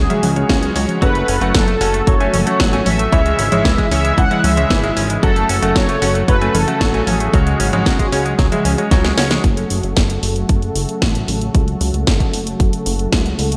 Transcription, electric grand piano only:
0.10 0.33 C#3 medium
0.10 0.33 G#3 medium
0.10 0.33 C#4 medium
0.10 0.33 F#4 medium
0.10 0.33 E5 medium
0.36 0.47 C#3 medium
0.36 0.47 G#3 medium
0.36 0.47 C#4 medium
0.36 0.47 F#4 medium
0.36 0.47 C#5 medium
0.49 0.73 C#3 medium
0.49 0.73 G#3 medium
0.49 0.73 C#4 medium
0.49 0.73 F#4 medium
0.49 0.73 C#5 medium
0.76 0.99 G#3 medium
0.76 0.99 C#4 medium
0.76 0.99 F#4 medium
0.76 0.99 C#5 medium
1.02 1.38 F#3 medium
1.02 1.38 C#4 medium
1.02 1.38 F#4 medium
1.02 1.38 A4 medium
1.02 1.38 F#5 loud
1.41 1.62 F#3 medium
1.41 1.62 C#4 medium
1.41 1.62 F#4 medium
1.41 1.62 A4 medium
1.41 1.62 F#5 loud
1.81 2.01 F#3 medium
1.81 2.01 C#4 medium
1.81 2.01 F#4 medium
1.81 2.01 A4 medium
1.81 2.01 F#5 medium
2.20 2.44 F#3 medium
2.20 2.44 C#4 medium
2.20 2.44 F#4 medium
2.20 2.44 A4 medium
2.20 2.44 G#5 medium
2.47 2.70 F#3 medium
2.47 2.70 C#4 medium
2.47 2.70 F#4 medium
2.47 2.70 A4 medium
2.47 2.70 F#5 medium
2.73 3.09 F#3 medium
2.73 3.09 C#4 medium
2.73 3.09 F#4 medium
2.73 3.09 A4 medium
2.73 3.09 G#5 medium
3.13 3.49 C#3 medium
3.13 3.49 G#3 medium
3.13 3.49 C#4 medium
3.13 3.49 E4 medium
3.13 3.49 C#5 loud
3.52 3.72 C#3 medium
3.52 3.72 G#3 medium
3.52 3.72 C#4 medium
3.52 3.72 E4 medium
3.52 3.72 C#5 loud
3.91 4.12 C#3 medium
3.91 4.12 G#3 medium
3.91 4.12 C#4 medium
3.91 4.12 E4 medium
3.91 4.12 C#5 loud
4.31 4.54 C#3 medium
4.31 4.54 G#3 medium
4.31 4.54 C#4 medium
4.31 4.54 E4 medium
4.31 4.54 E5 medium
4.57 4.80 C#3 medium
4.57 4.80 G#3 medium
4.57 4.80 C#4 medium
4.57 4.80 E4 medium
4.57 4.80 C#5 medium
4.84 5.20 C#3 medium
4.84 5.20 G#3 medium
4.84 5.20 C#4 medium
4.84 5.20 E4 medium
4.84 5.20 E5 medium
5.23 5.59 F#3 medium
5.23 5.59 C#4 medium
5.23 5.59 F#4 medium
5.23 5.59 A4 medium
5.23 5.59 F#5 loud
5.62 5.83 F#3 medium
5.62 5.83 C#4 medium
5.62 5.83 F#4 medium
5.62 5.83 A4 medium
5.62 5.83 F#5 loud
6.02 6.22 F#3 medium
6.02 6.22 C#4 medium
6.02 6.22 F#4 medium
6.02 6.22 A4 medium
6.02 6.22 F#5 loud
6.41 6.65 F#3 medium
6.41 6.65 C#4 medium
6.41 6.65 F#4 medium
6.41 6.65 A4 medium
6.41 6.65 G#5 medium
6.68 6.91 F#3 medium
6.68 6.91 C#4 medium
6.68 6.91 F#4 medium
6.68 6.91 A4 medium
6.68 6.91 F#5 medium
6.94 7.30 F#3 medium
6.94 7.30 C#4 medium
6.94 7.30 F#4 medium
6.94 7.30 A4 medium
6.94 7.30 G#5 medium
7.33 7.70 C#3 medium
7.33 7.70 G#3 medium
7.33 7.70 C#4 medium
7.33 7.70 F#4 medium
7.33 7.70 C#5 loud
7.73 7.93 C#3 medium
7.73 7.93 G#3 medium
7.73 7.93 C#4 medium
7.73 7.93 F#4 medium
7.73 7.93 C#5 loud
8.12 8.33 C#3 medium
8.12 8.33 G#3 medium
8.12 8.33 C#4 medium
8.12 8.33 F#4 medium
8.12 8.33 C#5 medium
8.52 8.75 C#3 medium
8.52 8.75 G#3 medium
8.52 8.75 C#4 medium
8.52 8.75 F#4 medium
8.52 8.75 E5 medium
8.78 8.89 C#3 medium
8.78 8.89 G#3 medium
8.78 8.89 C#4 medium
8.78 8.89 F#4 medium
8.78 8.89 C#5 medium
8.91 9.15 C#3 medium
8.91 9.15 G#3 medium
8.91 9.15 C#4 medium
8.91 9.15 F#4 medium
8.91 9.15 C#5 medium
9.18 9.41 G#3 medium
9.18 9.41 C#4 medium
9.18 9.41 F#4 medium
9.18 9.41 C#5 medium

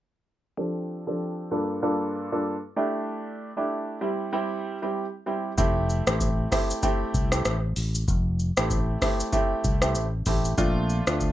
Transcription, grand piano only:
0.57 1.03 F3 medium
0.57 1.03 C4 medium
0.57 1.03 D4 medium
0.57 1.03 G4 medium
0.57 1.03 A4 medium
1.07 1.48 F3 medium
1.07 1.48 C4 medium
1.07 1.48 D4 medium
1.07 1.49 G4 medium
1.07 1.49 A4 medium
1.51 1.80 G2 medium
1.51 1.81 A#3 medium
1.51 1.81 D4 medium
1.51 1.81 F4 medium
1.51 1.81 A4 medium
1.82 2.28 G2 medium
1.82 2.28 A#3 medium
1.82 2.28 D4 medium
1.82 2.28 F4 medium
1.82 2.28 A4 medium
2.32 2.54 G2 medium
2.32 2.54 A#3 medium
2.32 2.54 D4 medium
2.32 2.54 F4 medium
2.32 2.55 A4 medium
2.76 3.50 A3 medium
2.76 3.50 D4 medium
2.76 3.50 E4 medium
2.76 3.50 G4 loud
3.57 3.98 A3 medium
3.57 3.98 D4 medium
3.57 3.98 E4 medium
3.57 3.98 G4 medium
4.01 4.30 G3 medium
4.01 4.31 C4 medium
4.01 4.31 E4 medium
4.01 4.31 G4 medium
4.33 4.78 G3 medium
4.33 4.78 C4 medium
4.33 4.78 E4 medium
4.33 4.78 G4 medium
4.82 5.04 G3 medium
4.82 5.04 C4 medium
4.82 5.05 E4 medium
4.82 5.05 G4 medium
5.26 5.51 G3 medium
5.26 5.51 C4 medium
5.26 5.51 E4 medium
5.26 5.51 G4 medium
5.58 6.03 A3 medium
5.58 6.03 C4 medium
5.58 6.03 E4 medium
5.58 6.03 G4 loud
6.07 6.48 A3 medium
6.07 6.48 C4 medium
6.07 6.48 E4 medium
6.07 6.48 G4 medium
6.51 6.81 A3 medium
6.51 6.81 C4 medium
6.51 6.81 E4 medium
6.51 6.81 G4 medium
6.83 7.28 A3 medium
6.83 7.28 C4 medium
6.83 7.28 E4 medium
6.83 7.28 G4 loud
7.32 7.54 A3 medium
7.32 7.54 C4 medium
7.32 7.54 E4 medium
7.32 7.55 G4 medium
8.57 8.98 A3 medium
8.57 8.98 C4 medium
8.57 8.98 E4 medium
8.57 8.99 G4 medium
9.01 9.31 A3 medium
9.01 9.31 C4 medium
9.01 9.31 E4 medium
9.01 9.31 G4 medium
9.32 9.78 A3 medium
9.32 9.78 C4 medium
9.32 9.78 E4 medium
9.32 9.78 G4 loud
9.82 10.04 A3 medium
9.82 10.04 C4 medium
9.82 10.05 E4 medium
9.82 10.05 G4 medium
10.26 10.51 A3 medium
10.26 10.51 C4 medium
10.26 10.51 E4 medium
10.26 10.51 G4 medium
10.57 11.03 A3 medium
10.57 11.03 C4 medium
10.57 11.03 D4 medium
10.57 11.03 F4 loud
11.07 11.32 A3 medium
11.07 11.32 C4 medium
11.07 11.32 D4 medium
11.07 11.32 F4 medium

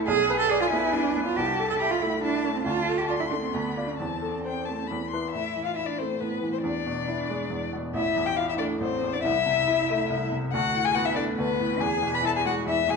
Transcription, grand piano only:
0.00 0.11 C2 medium
0.00 0.11 A3 medium
0.00 0.11 E4 medium
0.00 0.11 A4 medium
0.00 0.11 C5 medium
0.08 1.32 B1 medium
0.30 0.64 B4 medium
0.51 0.85 D5 medium
0.73 1.07 B3 medium
0.94 1.28 E4 medium
1.17 1.37 B3 medium
1.38 2.63 C2 medium
1.59 1.93 A4 medium
1.82 2.15 E5 soft
2.01 2.36 A3 soft
2.23 2.57 E4 medium
2.45 2.66 A3 soft
2.66 3.51 D2 medium
2.89 3.23 A4 soft
3.10 3.45 D5 soft
3.31 3.53 A3 soft
3.54 3.97 D2 medium
3.77 3.97 F4 soft
3.77 3.97 D5 soft
4.00 4.87 E2 soft
4.22 4.57 A4 soft
4.45 4.81 C5 soft
4.68 4.90 A3 soft
4.91 5.33 E2 soft
5.13 5.32 E4 soft
5.13 5.32 B4 soft
5.35 6.19 A2 soft
5.56 5.91 E3 soft
5.79 6.13 E4 soft
6.00 6.35 A3 soft
6.21 6.63 A2 soft
6.42 6.64 E3 soft
6.64 7.49 E2 medium
6.86 7.21 B2 soft
7.08 7.43 E4 soft
7.29 7.64 G#3 soft
7.50 7.93 E2 soft
7.73 7.95 B2 soft
7.94 8.79 A1 medium
8.16 8.51 E2 soft
8.37 8.72 E4 soft
8.59 8.94 A3 soft
8.80 9.23 A1 medium
9.02 9.24 E2 soft
9.24 10.08 C2 medium
9.46 9.81 C3 soft
9.67 10.02 E4 soft
9.90 10.24 A3 soft
10.10 10.52 C2 medium
10.32 10.54 C3 soft
10.53 11.37 D2 medium
10.74 11.09 A2 soft
10.95 11.30 B3 medium
11.16 11.51 A3 soft
11.38 11.80 D2 medium
11.59 11.81 A2 soft
11.80 12.65 E2 medium
12.02 12.37 B2 soft
12.23 12.58 E4 medium
12.45 12.80 G#3 soft
12.67 12.96 E2 medium
12.88 12.96 B2 soft

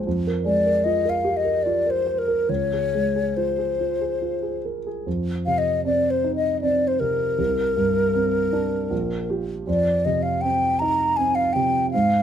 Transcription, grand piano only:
0.07 2.45 F2 soft
0.27 0.57 A#4 soft
0.45 0.76 G#3 soft
0.66 0.97 A#4 soft
0.86 1.17 F4 soft
1.05 1.37 A#4 soft
1.25 1.57 G4 soft
1.45 1.77 A#4 soft
1.66 1.98 F4 soft
1.86 2.19 A#4 soft
2.07 2.27 C5 soft
2.28 2.49 A#4 soft
2.49 5.02 C#2 soft
2.73 3.07 G#4 soft
2.95 3.29 G#3 soft
3.16 3.50 G#4 soft
3.37 3.71 F4 soft
3.58 3.92 G#4 soft
3.80 4.13 F4 soft
4.01 4.34 G#4 soft
4.22 4.56 F4 soft
4.43 4.77 G#4 soft
4.65 4.86 A#4 soft
4.87 5.07 G#4 soft
5.06 7.35 F2 soft
5.47 6.09 C3 soft
5.85 6.47 C4 soft
6.24 6.86 D#4 soft
6.63 7.24 C4 soft
7.00 7.39 C3 soft
7.39 8.88 C2 soft
7.77 8.38 G2 soft
8.14 8.76 C4 soft
8.53 8.91 D4 soft
8.90 9.64 A#1 soft
9.30 9.64 F4 soft
9.30 9.64 G4 soft
9.67 11.89 F2 soft
10.05 10.66 C3 soft
10.43 11.03 C4 soft
10.82 11.41 D#4 soft
11.18 11.78 C4 soft
11.56 11.93 C3 soft
11.94 12.23 G#2 soft

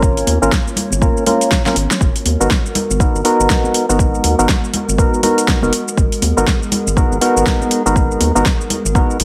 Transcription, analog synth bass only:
0.00 0.23 G#1 medium
0.27 0.38 D#2 medium
0.42 0.49 G#1 medium
0.92 1.08 G#1 medium
1.76 1.87 G#1 medium
2.01 2.12 G#1 medium
2.26 2.36 D#2 medium
2.40 2.48 G#1 medium
2.90 3.07 G#1 medium
3.15 3.22 G#1 loud
3.40 3.47 G#1 loud
3.89 4.20 G#1 medium
4.24 4.35 D#2 medium
4.39 4.46 G#1 loud
4.88 5.05 G#1 medium
5.63 5.70 F#1 loud
5.98 6.08 G#1 medium
6.22 6.33 D#2 medium
6.37 6.44 G#1 loud
6.87 7.03 G#1 medium
7.12 7.19 G#1 loud
7.36 7.44 G#1 loud
7.86 8.16 G#1 medium
8.21 8.31 D#2 medium
8.36 8.43 G#1 loud
8.85 9.02 G#1 medium
9.20 9.24 G#1 loud

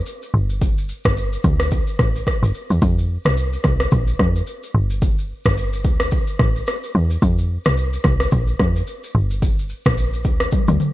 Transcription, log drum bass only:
0.34 0.93 G1 loud
1.05 1.37 G1 medium
1.44 1.80 D2 medium
1.99 2.22 A1 medium
2.43 2.52 G1 medium
2.70 2.80 E2 medium
2.82 3.18 F2 loud
3.25 3.58 C2 medium
3.65 3.87 C2 medium
3.92 4.15 A#1 medium
4.19 4.42 F2 medium
4.75 5.33 G1 loud
5.46 5.86 G1 medium
5.85 6.21 D2 loud
6.40 6.62 A1 medium
6.95 7.18 E2 medium
7.22 7.58 F2 loud
7.66 7.98 C2 medium
8.05 8.27 C2 medium
8.32 8.55 A#1 loud
8.60 8.82 F2 medium
9.15 9.74 G1 loud
9.86 10.26 A#1 medium
10.25 10.48 D2 medium
10.68 10.78 D2 medium

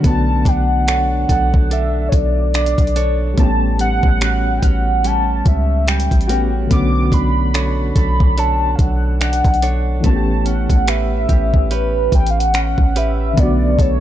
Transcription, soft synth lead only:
0.06 0.49 A5 loud
0.48 1.30 F#5 loud
1.31 1.74 F#5 medium
1.72 2.10 E5 loud
2.09 2.16 C#5 medium
2.14 2.55 D5 medium
2.56 3.17 D5 medium
3.39 3.77 A5 loud
3.81 4.53 F#5 loud
4.58 4.65 G5 medium
4.64 5.07 F#5 loud
5.06 5.49 A5 loud
5.47 5.90 E5 medium
5.89 6.54 G5 loud
6.72 7.15 D6 loud
7.14 7.97 B5 loud
7.97 8.41 B5 loud
8.39 8.77 A5 loud
8.75 8.82 F5 medium
8.81 9.22 F#5 medium
9.22 9.83 F#5 loud
10.05 10.49 A5 loud
10.47 10.91 F#5 medium
10.89 11.74 E5 loud
11.73 12.13 B4 medium
12.15 12.32 G5 medium
12.30 12.40 F5 medium
12.39 12.99 F#5 medium
12.98 13.41 E5 medium
13.40 13.82 D5 loud
13.81 14.00 C#5 medium

